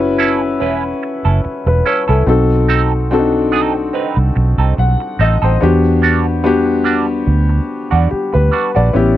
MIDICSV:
0, 0, Header, 1, 6, 480
1, 0, Start_track
1, 0, Tempo, 833449
1, 1310, Time_signature, 4, 2, 24, 8
1, 5282, End_track
2, 0, Start_track
2, 0, Title_t, "Grand piano"
2, 0, Program_c, 0, 0
2, 0, Control_c, 0, 64, 127
2, 0, Note_on_c, 0, 61, 84
2, 0, Note_on_c, 0, 64, 80
2, 0, Note_on_c, 0, 66, 69
2, 0, Note_on_c, 0, 69, 81
2, 0, Note_on_c, 0, 71, 85
2, 516, Note_off_c, 0, 61, 0
2, 518, Note_off_c, 0, 64, 0
2, 520, Note_off_c, 0, 66, 0
2, 524, Note_off_c, 0, 71, 0
2, 961, Note_on_c, 0, 71, 63
2, 1065, Note_off_c, 0, 71, 0
2, 1073, Note_on_c, 0, 73, 59
2, 1195, Note_off_c, 0, 73, 0
2, 1203, Note_off_c, 0, 69, 0
2, 1203, Note_on_c, 0, 69, 61
2, 1304, Note_on_c, 0, 60, 66
2, 1309, Note_off_c, 0, 69, 0
2, 1309, Note_on_c, 0, 63, 59
2, 1311, Note_on_c, 0, 66, 63
2, 1317, Control_c, 0, 64, 0
2, 1317, Note_on_c, 0, 69, 80
2, 1421, Control_c, 0, 64, 127
2, 1634, Note_off_c, 0, 60, 0
2, 1637, Note_off_c, 0, 63, 0
2, 1638, Note_off_c, 0, 66, 0
2, 1641, Note_off_c, 0, 69, 0
2, 1791, Note_on_c, 0, 60, 74
2, 1794, Note_on_c, 0, 62, 57
2, 1798, Note_on_c, 0, 66, 76
2, 1804, Note_on_c, 0, 69, 83
2, 1833, Note_off_c, 0, 62, 0
2, 1833, Note_on_c, 0, 63, 71
2, 2439, Note_off_c, 0, 60, 0
2, 2442, Note_off_c, 0, 66, 0
2, 2445, Note_off_c, 0, 69, 0
2, 2460, Note_off_c, 0, 63, 0
2, 2759, Note_on_c, 0, 78, 59
2, 2983, Note_off_c, 0, 78, 0
2, 2998, Note_on_c, 0, 75, 63
2, 3117, Note_off_c, 0, 75, 0
2, 3131, Note_on_c, 0, 72, 65
2, 3229, Note_on_c, 0, 59, 70
2, 3234, Note_on_c, 0, 62, 63
2, 3236, Control_c, 0, 64, 0
2, 3240, Note_on_c, 0, 66, 64
2, 3244, Note_on_c, 0, 67, 82
2, 3346, Control_c, 0, 64, 127
2, 3353, Note_off_c, 0, 72, 0
2, 3557, Note_off_c, 0, 59, 0
2, 3559, Note_off_c, 0, 62, 0
2, 3562, Note_off_c, 0, 66, 0
2, 3565, Note_off_c, 0, 67, 0
2, 3707, Note_on_c, 0, 59, 80
2, 3710, Note_on_c, 0, 62, 71
2, 3715, Note_on_c, 0, 66, 67
2, 3722, Note_on_c, 0, 67, 91
2, 4357, Note_off_c, 0, 59, 0
2, 4358, Note_off_c, 0, 62, 0
2, 4361, Note_off_c, 0, 66, 0
2, 4364, Note_off_c, 0, 67, 0
2, 4668, Note_on_c, 0, 67, 57
2, 4792, Note_off_c, 0, 67, 0
2, 4801, Note_on_c, 0, 71, 65
2, 5028, Note_off_c, 0, 71, 0
2, 5045, Note_on_c, 0, 74, 67
2, 5145, Note_on_c, 0, 59, 64
2, 5148, Note_on_c, 0, 61, 62
2, 5153, Note_on_c, 0, 64, 63
2, 5157, Control_c, 0, 64, 0
2, 5161, Note_on_c, 0, 67, 78
2, 5263, Control_c, 0, 64, 127
2, 5270, Note_off_c, 0, 74, 0
2, 5282, Note_off_c, 0, 59, 0
2, 5282, Note_off_c, 0, 61, 0
2, 5282, Note_off_c, 0, 64, 0
2, 5282, Note_off_c, 0, 67, 0
2, 5282, End_track
3, 0, Start_track
3, 0, Title_t, "Clean electric guitar"
3, 0, Program_c, 1, 27
3, 107, Note_on_c, 1, 61, 67
3, 112, Note_on_c, 1, 64, 73
3, 115, Note_on_c, 1, 69, 80
3, 232, Note_off_c, 1, 69, 0
3, 238, Note_off_c, 1, 61, 0
3, 239, Note_off_c, 1, 64, 0
3, 347, Note_on_c, 1, 61, 80
3, 351, Note_on_c, 1, 64, 78
3, 354, Note_on_c, 1, 71, 78
3, 479, Note_off_c, 1, 61, 0
3, 481, Note_off_c, 1, 64, 0
3, 482, Note_off_c, 1, 71, 0
3, 719, Note_on_c, 1, 69, 54
3, 722, Note_on_c, 1, 64, 45
3, 727, Note_on_c, 1, 61, 37
3, 806, Note_off_c, 1, 69, 0
3, 808, Note_off_c, 1, 64, 0
3, 810, Note_off_c, 1, 61, 0
3, 1069, Note_on_c, 1, 61, 57
3, 1073, Note_on_c, 1, 64, 56
3, 1076, Note_on_c, 1, 69, 63
3, 1171, Note_off_c, 1, 61, 0
3, 1173, Note_off_c, 1, 64, 0
3, 1175, Note_off_c, 1, 69, 0
3, 1197, Note_on_c, 1, 69, 54
3, 1202, Note_on_c, 1, 64, 48
3, 1205, Note_on_c, 1, 61, 42
3, 1285, Note_off_c, 1, 69, 0
3, 1287, Note_off_c, 1, 64, 0
3, 1289, Note_off_c, 1, 61, 0
3, 1546, Note_on_c, 1, 60, 67
3, 1551, Note_on_c, 1, 63, 76
3, 1554, Note_on_c, 1, 69, 83
3, 1678, Note_off_c, 1, 60, 0
3, 1681, Note_off_c, 1, 63, 0
3, 1682, Note_off_c, 1, 69, 0
3, 2026, Note_on_c, 1, 60, 70
3, 2030, Note_on_c, 1, 63, 78
3, 2034, Note_on_c, 1, 69, 75
3, 2149, Note_off_c, 1, 69, 0
3, 2154, Note_off_c, 1, 63, 0
3, 2158, Note_off_c, 1, 60, 0
3, 2265, Note_on_c, 1, 60, 64
3, 2269, Note_on_c, 1, 63, 73
3, 2274, Note_on_c, 1, 71, 74
3, 2397, Note_off_c, 1, 60, 0
3, 2400, Note_off_c, 1, 63, 0
3, 2402, Note_off_c, 1, 71, 0
3, 2640, Note_on_c, 1, 69, 49
3, 2643, Note_on_c, 1, 63, 46
3, 2647, Note_on_c, 1, 60, 46
3, 2726, Note_off_c, 1, 69, 0
3, 2728, Note_off_c, 1, 63, 0
3, 2730, Note_off_c, 1, 60, 0
3, 2990, Note_on_c, 1, 60, 42
3, 2994, Note_on_c, 1, 63, 54
3, 2999, Note_on_c, 1, 69, 55
3, 3092, Note_off_c, 1, 60, 0
3, 3094, Note_off_c, 1, 63, 0
3, 3096, Note_off_c, 1, 69, 0
3, 3120, Note_on_c, 1, 69, 49
3, 3124, Note_on_c, 1, 63, 43
3, 3129, Note_on_c, 1, 60, 35
3, 3207, Note_off_c, 1, 69, 0
3, 3208, Note_off_c, 1, 63, 0
3, 3211, Note_off_c, 1, 60, 0
3, 3467, Note_on_c, 1, 55, 57
3, 3473, Note_on_c, 1, 62, 66
3, 3478, Note_on_c, 1, 66, 68
3, 3599, Note_off_c, 1, 55, 0
3, 3602, Note_off_c, 1, 62, 0
3, 3604, Note_off_c, 1, 66, 0
3, 3941, Note_on_c, 1, 55, 64
3, 3947, Note_on_c, 1, 62, 72
3, 3951, Note_on_c, 1, 66, 72
3, 4063, Note_off_c, 1, 66, 0
3, 4068, Note_off_c, 1, 62, 0
3, 4076, Note_off_c, 1, 55, 0
3, 4555, Note_on_c, 1, 66, 69
3, 4559, Note_on_c, 1, 62, 62
3, 4564, Note_on_c, 1, 55, 50
3, 4660, Note_off_c, 1, 55, 0
3, 4662, Note_off_c, 1, 62, 0
3, 4664, Note_off_c, 1, 66, 0
3, 4905, Note_on_c, 1, 55, 57
3, 4911, Note_on_c, 1, 62, 60
3, 4914, Note_on_c, 1, 66, 54
3, 5009, Note_off_c, 1, 55, 0
3, 5012, Note_off_c, 1, 62, 0
3, 5014, Note_off_c, 1, 66, 0
3, 5038, Note_on_c, 1, 66, 49
3, 5044, Note_on_c, 1, 62, 48
3, 5047, Note_on_c, 1, 55, 40
3, 5125, Note_off_c, 1, 66, 0
3, 5129, Note_off_c, 1, 62, 0
3, 5130, Note_off_c, 1, 55, 0
3, 5282, End_track
4, 0, Start_track
4, 0, Title_t, "Fingered electric bass"
4, 0, Program_c, 2, 33
4, 0, Note_on_c, 2, 30, 81
4, 349, Note_off_c, 2, 30, 0
4, 349, Note_on_c, 2, 28, 101
4, 530, Note_off_c, 2, 28, 0
4, 722, Note_on_c, 2, 30, 78
4, 804, Note_off_c, 2, 30, 0
4, 958, Note_on_c, 2, 28, 81
4, 1042, Note_off_c, 2, 28, 0
4, 1204, Note_on_c, 2, 36, 74
4, 1285, Note_off_c, 2, 36, 0
4, 1306, Note_on_c, 2, 35, 85
4, 2245, Note_off_c, 2, 35, 0
4, 2401, Note_on_c, 2, 36, 76
4, 2483, Note_off_c, 2, 36, 0
4, 2514, Note_on_c, 2, 35, 76
4, 2609, Note_off_c, 2, 35, 0
4, 2637, Note_on_c, 2, 36, 74
4, 2721, Note_off_c, 2, 36, 0
4, 2755, Note_on_c, 2, 35, 78
4, 2850, Note_off_c, 2, 35, 0
4, 2991, Note_on_c, 2, 33, 81
4, 3088, Note_off_c, 2, 33, 0
4, 3124, Note_on_c, 2, 33, 70
4, 3205, Note_off_c, 2, 33, 0
4, 3240, Note_on_c, 2, 40, 78
4, 4172, Note_off_c, 2, 40, 0
4, 4189, Note_on_c, 2, 38, 84
4, 4369, Note_off_c, 2, 38, 0
4, 4563, Note_on_c, 2, 40, 72
4, 4645, Note_off_c, 2, 40, 0
4, 4809, Note_on_c, 2, 38, 89
4, 4888, Note_off_c, 2, 38, 0
4, 5048, Note_on_c, 2, 34, 72
4, 5128, Note_off_c, 2, 34, 0
4, 5153, Note_on_c, 2, 33, 73
4, 5282, Note_off_c, 2, 33, 0
4, 5282, End_track
5, 0, Start_track
5, 0, Title_t, "Muted clean electric guitar strokes"
5, 0, Note_on_c, 9, 29, 38
5, 58, Note_off_c, 9, 29, 0
5, 239, Note_on_c, 9, 29, 37
5, 296, Note_off_c, 9, 29, 0
5, 593, Note_on_c, 9, 29, 36
5, 650, Note_off_c, 9, 29, 0
5, 830, Note_on_c, 9, 29, 36
5, 888, Note_off_c, 9, 29, 0
5, 962, Note_on_c, 9, 29, 37
5, 1020, Note_off_c, 9, 29, 0
5, 1787, Note_on_c, 9, 29, 37
5, 1844, Note_off_c, 9, 29, 0
5, 1917, Note_on_c, 9, 29, 33
5, 1975, Note_off_c, 9, 29, 0
5, 2155, Note_on_c, 9, 29, 30
5, 2213, Note_off_c, 9, 29, 0
5, 2508, Note_on_c, 9, 29, 30
5, 2566, Note_off_c, 9, 29, 0
5, 2748, Note_on_c, 9, 29, 31
5, 2806, Note_off_c, 9, 29, 0
5, 2882, Note_on_c, 9, 29, 34
5, 2939, Note_off_c, 9, 29, 0
5, 3704, Note_on_c, 9, 29, 35
5, 3761, Note_off_c, 9, 29, 0
5, 3835, Note_on_c, 9, 29, 34
5, 3892, Note_off_c, 9, 29, 0
5, 4070, Note_on_c, 9, 29, 32
5, 4128, Note_off_c, 9, 29, 0
5, 4185, Note_on_c, 9, 29, 36
5, 4243, Note_off_c, 9, 29, 0
5, 4316, Note_on_c, 9, 29, 33
5, 4373, Note_off_c, 9, 29, 0
5, 4667, Note_on_c, 9, 29, 34
5, 4724, Note_off_c, 9, 29, 0
5, 4796, Note_on_c, 9, 29, 37
5, 4853, Note_off_c, 9, 29, 0
5, 5282, End_track
6, 0, Start_track
6, 0, Title_t, "Muted fingered electric bass strokes"
6, 839, Note_on_c, 9, 29, 42
6, 896, Note_off_c, 9, 29, 0
6, 4679, Note_on_c, 9, 29, 44
6, 4737, Note_off_c, 9, 29, 0
6, 5282, End_track
0, 0, End_of_file